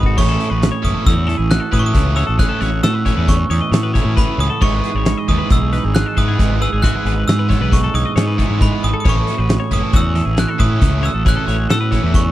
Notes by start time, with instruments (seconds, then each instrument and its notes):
Already playing: fingered electric bass G#1, clean electric guitar G#2 B2 E3 G#3 C#4 F#4
0.03 clean electric guitar F#4, kick
0.17 fingered electric bass A1, clean electric guitar A2 C#4 C#5, overdriven electric guitar E3 A3 C#4 E4, glockenspiel C#6, kick, crash
0.29 clean electric guitar A4
0.40 clean electric guitar E4, closed hi-hat
0.50 fingered electric bass A1, clean electric guitar F#4 B4
0.62 snare, closed hi-hat
0.72 clean electric guitar C#5
0.83 fingered electric bass F#1, overdriven electric guitar E3 A3 C#4 E4, clean electric guitar E3, glockenspiel D#6, kick, closed hi-hat
0.94 clean electric guitar A4
1.05 fingered electric bass E2, clean electric guitar C#4 F#4, glockenspiel E6, kick, closed hi-hat
1.27 clean electric guitar E3 E4 A4, closed hi-hat
1.37 fingered electric bass A1, clean electric guitar G#4
1.50 clean electric guitar F#4, glockenspiel F#6, snare, closed hi-hat
1.60 clean electric guitar A4
1.72 fingered electric bass A2, overdriven electric guitar E3 A3 C#4 E4, clean electric guitar E4 B4, glockenspiel D#6, kick, snare, closed hi-hat
1.79 clean electric guitar A4, glockenspiel C#6
1.86 glockenspiel D#6
1.94 fingered electric bass C#2, clean electric guitar A2 C#4, overdriven electric guitar E3 A3 C#4 E4, kick, closed hi-hat
2.16 clean electric guitar F#4 C#5, glockenspiel E6, closed hi-hat
2.27 fingered electric bass A1, clean electric guitar A4
2.39 clean electric guitar A2 C#4 G#4, overdriven electric guitar E3 A3 C#4 E4, glockenspiel F#6, kick, closed hi-hat
2.49 clean electric guitar A4
2.61 fingered electric bass A1, clean electric guitar F#4 C#5, snare, closed hi-hat
2.83 fingered electric bass A2, clean electric guitar A4, glockenspiel E6, snare, closed hi-hat
2.94 clean electric guitar B4
3.05 clean electric guitar E3 C#5, overdriven electric guitar E3 A3 C#4 E4, kick, snare, closed hi-hat
3.17 fingered electric bass E2, clean electric guitar B4
3.28 clean electric guitar C#4, glockenspiel C#6, kick, snare, closed hi-hat
3.40 clean electric guitar A4
3.50 fingered electric bass E2, clean electric guitar E3 E4 C#5, glockenspiel D#6, closed hi-hat
3.61 clean electric guitar D#5
3.71 fingered electric bass A2, clean electric guitar F#4 C#5, snare, closed hi-hat
3.83 clean electric guitar B4
3.94 overdriven electric guitar E3 A3 C#4 E4, clean electric guitar E4 C#5, kick, snare, closed hi-hat
4.05 fingered electric bass A2
4.17 clean electric guitar A2 C#4 B4, overdriven electric guitar E3 A3 C#4 E4, glockenspiel B5, kick, closed hi-hat
4.38 fingered electric bass C#2, clean electric guitar F#4, glockenspiel D#6, closed hi-hat
4.50 clean electric guitar A4
4.61 fingered electric bass G#1, clean electric guitar G#2 E3 G#3 D#4 G#4 C#5, overdriven electric guitar E3 G#3 B3 E4, glockenspiel C#6, kick, crash
4.74 clean electric guitar B4
4.84 clean electric guitar G#4, closed hi-hat
4.94 fingered electric bass G#1, clean electric guitar C#5
5.05 snare, closed hi-hat
5.17 clean electric guitar D#5
5.28 fingered electric bass D#2, clean electric guitar E3, overdriven electric guitar E3 G#3 B3 E4, glockenspiel D#6, kick, closed hi-hat
5.38 clean electric guitar B4
5.50 fingered electric bass B1, clean electric guitar G#3 G#4, glockenspiel E6, kick, closed hi-hat
5.73 clean electric guitar G#2 D#4 B4, snare, closed hi-hat
5.84 fingered electric bass G#1, clean electric guitar G#4
5.95 clean electric guitar G#4, glockenspiel F#6, snare, closed hi-hat
6.06 clean electric guitar A4
6.17 fingered electric bass G#2, overdriven electric guitar E3 G#3 B3 E4, clean electric guitar D#4 B4, glockenspiel D#6, kick, closed hi-hat
6.28 clean electric guitar G#4
6.39 fingered electric bass G#1, clean electric guitar G#2 G#3, overdriven electric guitar E3 G#3 B3 E4, kick, snare, closed hi-hat
6.61 clean electric guitar G#4 B4, glockenspiel E6, closed hi-hat
6.73 fingered electric bass G#1, clean electric guitar G#4
6.82 clean electric guitar G#2 G#3 F#4, overdriven electric guitar E3 G#3 B3 E4, glockenspiel F#6, kick, closed hi-hat
6.95 clean electric guitar G#4
7.05 fingered electric bass G#1, clean electric guitar G#4 B4, closed hi-hat
7.28 fingered electric bass G#2, clean electric guitar G#4, glockenspiel E6, snare, closed hi-hat
7.39 clean electric guitar B4
7.49 clean electric guitar E3 C#5, overdriven electric guitar E3 G#3 B3 E4, kick, snare, closed hi-hat
7.61 fingered electric bass B1, clean electric guitar B4
7.72 clean electric guitar G#3, glockenspiel C#6, kick, closed hi-hat
7.84 clean electric guitar A4
7.93 fingered electric bass B1, clean electric guitar G#2 D#4 C#5, glockenspiel D#6, snare, closed hi-hat
8.06 clean electric guitar D#5
8.16 fingered electric bass G#2, clean electric guitar G#4 C#5, snare, closed hi-hat
8.28 clean electric guitar B4
8.38 overdriven electric guitar E3 G#3 B3 E4, clean electric guitar D#4 C#5, kick, closed hi-hat
8.50 fingered electric bass G#2
8.60 clean electric guitar G#2 G#3 B4, overdriven electric guitar E3 G#3 B3 E4, glockenspiel B5, kick, closed hi-hat
8.83 fingered electric bass G#1, clean electric guitar G#4, glockenspiel D#6, closed hi-hat
8.94 clean electric guitar A4
9.00 glockenspiel D#6
9.04 fingered electric bass A1, clean electric guitar A2 C#4 C#5, overdriven electric guitar E3 A3 C#4 E4, kick, crash
9.09 glockenspiel C#6
9.16 clean electric guitar A4
9.27 clean electric guitar F#4, snare, closed hi-hat
9.38 fingered electric bass A1, clean electric guitar B4
9.49 snare, closed hi-hat
9.60 clean electric guitar C#5
9.71 fingered electric bass F#1, clean electric guitar E3, overdriven electric guitar E3 A3 C#4 E4, glockenspiel D#6, kick, snare, closed hi-hat
9.83 clean electric guitar A4
9.93 fingered electric bass E2, clean electric guitar C#4 F#4, glockenspiel E6, kick, closed hi-hat
10.15 clean electric guitar E3 E4 A4, snare, closed hi-hat
10.25 fingered electric bass A1, clean electric guitar G#4
10.37 clean electric guitar E4, glockenspiel F#6, snare, closed hi-hat
10.48 clean electric guitar F#4 A4
10.59 fingered electric bass A2, overdriven electric guitar E3 A3 C#4 E4, clean electric guitar E4 B4, glockenspiel D#6, kick, closed hi-hat
10.70 clean electric guitar A4
10.81 fingered electric bass C#2, clean electric guitar A2 C#4, overdriven electric guitar E3 A3 C#4 E4, kick, closed hi-hat
11.03 clean electric guitar F#4 C#5, glockenspiel E6, closed hi-hat
11.14 fingered electric bass A1, clean electric guitar A4
11.25 clean electric guitar A2 C#4 G#4, overdriven electric guitar E3 A3 C#4 E4, glockenspiel F#6, kick, closed hi-hat
11.36 clean electric guitar A4
11.47 fingered electric bass A1, clean electric guitar F#4 C#5, closed hi-hat
11.70 fingered electric bass A2, clean electric guitar A4, glockenspiel E6, snare, closed hi-hat
11.81 clean electric guitar B4
11.91 clean electric guitar E3 C#5, overdriven electric guitar E3 A3 C#4 E4, kick, snare, closed hi-hat
12.03 fingered electric bass E2, clean electric guitar B4
12.14 clean electric guitar C#4, glockenspiel C#6, kick, closed hi-hat
12.24 clean electric guitar A4